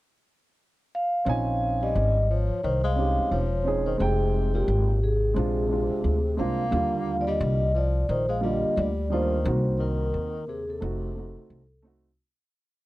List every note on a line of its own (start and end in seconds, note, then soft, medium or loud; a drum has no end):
0.95 1.85 F5 loud
1.25 1.91 A#1 loud
1.25 2.13 C4 medium
1.25 2.14 C#4 medium
1.25 2.15 D#4 medium
1.29 2.15 G#5 medium
1.82 2.26 G3 medium
1.82 2.31 D#5 loud
1.96 2.47 G#1 medium
2.30 2.61 F3 medium
2.30 2.65 C#5 medium
2.50 muted upright bass stroke soft
2.63 3.15 C2 loud
2.63 2.82 D#3 medium
2.63 2.85 C5 medium
2.83 3.28 G#3 medium
2.83 3.34 F5 loud
2.95 3.40 C4 medium
2.95 3.41 C#4 medium
2.95 3.41 D#4 medium
2.95 3.42 G4 medium
3.18 muted upright bass stroke soft
3.31 3.96 E1 medium
3.31 3.82 F3 medium
3.31 3.88 C#5 medium
3.64 3.88 C4 medium
3.64 3.89 C#4 medium
3.64 3.90 D#4 medium
3.64 3.90 G#4 medium
3.85 3.98 D#3 medium
3.85 4.00 C5 medium
3.98 4.65 F1 loud
3.98 4.50 C3 medium
3.98 4.86 G#3 medium
3.98 4.87 C4 medium
3.98 4.87 D#4 medium
3.98 4.50 G#4 medium
3.98 4.88 G5 medium
4.53 4.98 A#2 medium
4.53 5.04 G4 medium
4.68 5.33 G#1 loud
5.02 6.34 C3 medium
5.02 6.35 G#4 medium
5.34 5.88 A#1 loud
5.34 5.64 G#3 medium
5.34 5.64 C4 medium
5.34 5.65 D4 medium
5.34 5.66 F4 medium
5.69 6.13 G#3 medium
5.69 6.14 C4 medium
5.69 6.14 D4 medium
5.69 6.15 F4 medium
5.90 muted upright bass stroke soft
6.04 6.37 D2 medium
6.37 6.71 C2 medium
6.37 6.61 G#3 medium
6.37 7.14 A#3 medium
6.37 6.62 C4 medium
6.37 6.62 D4 medium
6.37 6.63 F4 medium
6.37 7.22 F5 medium
6.71 7.37 D#2 loud
6.71 7.60 D3 medium
6.71 7.59 G3 medium
6.71 7.59 A#3 medium
6.71 7.61 F4 medium
7.19 7.26 F3 medium
7.19 7.28 D5 medium
7.27 7.71 G3 medium
7.27 7.72 D#5 medium
7.41 8.05 C2 loud
7.74 8.06 F3 medium
7.74 8.11 D5 medium
8.09 8.61 A#1 medium
8.09 8.28 D#3 medium
8.09 8.28 C5 medium
8.29 8.41 G#3 medium
8.29 8.42 F5 medium
8.41 8.87 D3 medium
8.41 8.85 G3 medium
8.41 8.74 G3 medium
8.41 8.86 A#3 medium
8.41 8.87 F4 medium
8.41 8.78 D#5 medium
8.64 muted upright bass stroke soft
8.76 9.47 D2 medium
8.76 9.08 G3 medium
8.76 9.13 D5 medium
9.10 9.61 D#3 medium
9.10 9.34 G3 medium
9.10 9.34 A#3 medium
9.10 9.35 D4 medium
9.10 9.36 F4 medium
9.10 9.82 C5 medium
9.44 10.10 C2 loud
9.44 10.32 A#3 medium
9.44 10.32 C4 medium
9.44 10.33 D#4 medium
9.44 10.34 F#4 medium
9.78 10.43 D#3 medium
9.78 10.50 A#4 medium
10.14 10.78 D#2 medium
10.47 10.66 C3 medium
10.47 10.69 G#4 medium
10.67 11.80 C3 medium
10.67 11.81 A4 medium
10.80 11.33 F1 loud
10.80 11.10 A3 medium
10.80 11.10 C4 medium
10.80 11.11 D#4 medium
10.80 11.11 F#4 medium
11.15 11.59 A3 medium
11.15 11.59 C4 medium
11.15 11.60 D#4 medium
11.15 11.61 F#4 medium
11.37 muted upright bass stroke soft
11.50 12.15 C2 medium
11.82 12.07 A3 medium
11.82 12.07 C4 medium
11.82 12.08 D#4 medium
11.87 12.09 F#4 medium